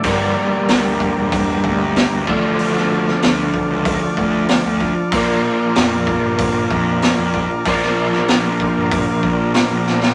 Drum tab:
HH |o---o---o---o---|o---o---o---o---|o---o---o---o---|o---o---o---o---|
SD |----o-------o---|-o-oo-------o---|----o-------o---|-o-oo-------o-oo|
BD |o-----o-o-o---o-|------o-o-o---o-|o-----o-o-o---o-|o-----o-o-o-----|